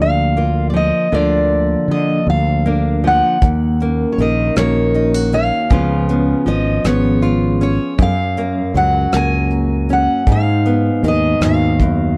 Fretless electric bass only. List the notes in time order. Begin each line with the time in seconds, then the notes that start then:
Already playing: D2
1.12 D2
1.88 D3
2.27 D2
3.42 D#2
4.18 A#1
4.56 A#1
5.71 C#2
6.47 G#1
6.84 G#1
7.99 F#2
8.74 C#2
9.13 C#2
10.27 G#2
11.03 D#2
11.40 D#2